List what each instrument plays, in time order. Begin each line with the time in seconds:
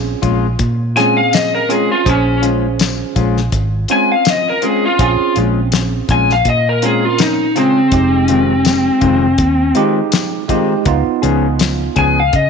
Already playing: fingered electric bass A#1, tine electric piano C4 C#4 G#4
0.22 fingered electric bass A#1, clean electric guitar G#3 C#4 F4, kick, closed hi-hat
0.59 fingered electric bass A#2, kick, closed hi-hat
0.96 clean electric guitar G#3 C#4 F4, tine electric piano C4 C#4 G#4, lead electric guitar G#5, snare, closed hi-hat
1.17 lead electric guitar F5
1.33 lead electric guitar D#5, snare, closed hi-hat, tambourine
1.55 lead electric guitar A#4
1.69 clean electric guitar G#3 C#4 F4, tine electric piano C4 C#4 G#4, lead electric guitar G#4, closed hi-hat
1.92 lead electric guitar F4
2.06 fingered electric bass A#1, tine electric piano C#4 G#4 C5, lead electric guitar C#4, kick, closed hi-hat
2.42 clean electric guitar G#3 C#4 F4, closed hi-hat
2.79 snare, closed hi-hat, tambourine
3.16 fingered electric bass A#1, clean electric guitar G#3 C#4 F4, kick, closed hi-hat
3.37 snare
3.52 fingered electric bass G#1, kick, closed hi-hat
3.88 clean electric guitar G#3 C#4 F4, tine electric piano C4 C#4 F4, closed hi-hat
3.92 lead electric guitar G#5
4.12 lead electric guitar F5
4.25 snare, closed hi-hat, tambourine
4.30 lead electric guitar D#5
4.50 lead electric guitar A#4
4.62 clean electric guitar G#3 C#4 F4, tine electric piano C4 C#4 G#4, lead electric guitar G#4, closed hi-hat
4.86 lead electric guitar F4
4.99 fingered electric bass A#1, tine electric piano C4 C#4 G#4, lead electric guitar F4, kick, closed hi-hat
5.36 fingered electric bass A#1, clean electric guitar G#3 C#4 F4, closed hi-hat
5.72 snare, closed hi-hat, tambourine
6.09 fingered electric bass A#1, clean electric guitar G#3 C#4 F4, lead electric guitar G#5, kick, closed hi-hat
6.30 lead electric guitar F5, snare
6.45 fingered electric bass A#2, kick, closed hi-hat
6.50 lead electric guitar D#5
6.69 lead electric guitar A#4
6.82 clean electric guitar G#3 C#4 F4, tine electric piano C4 C#4 A#4, lead electric guitar G#4, closed hi-hat
7.05 lead electric guitar F4
7.18 lead electric guitar D#4, snare, closed hi-hat, tambourine
7.56 tine electric piano C#3 C4 G#4, clean electric guitar G#3 C#4 F4, lead electric guitar C4, closed hi-hat
7.92 fingered electric bass F1, tine electric piano G#3 D#4 G4, kick, closed hi-hat
8.28 clean electric guitar D#3 G#3 C4 F4, closed hi-hat
8.65 snare, closed hi-hat, tambourine
9.01 fingered electric bass F1, clean electric guitar D#3 G#3 C4 F4, kick, closed hi-hat
9.38 fingered electric bass D#2, kick, closed hi-hat
9.75 clean electric guitar D#3 G#3 C4 F4, tine electric piano G#3 D#4 G4, closed hi-hat
10.12 snare, closed hi-hat, tambourine
10.49 clean electric guitar D#3 G#3 C4 F4, tine electric piano G#3 D#4 G4, kick, closed hi-hat
10.85 fingered electric bass C#2, tine electric piano B3 D#4 F4, kick, closed hi-hat
11.22 fingered electric bass C#2, clean electric guitar F3 B3 C#4 G#4, closed hi-hat
11.59 snare, closed hi-hat, tambourine
11.96 fingered electric bass C#2, clean electric guitar F3 B3 C#4 G#4, lead electric guitar G#5, kick, closed hi-hat
12.20 lead electric guitar F5
12.33 fingered electric bass C#3, lead electric guitar D#5, kick, closed hi-hat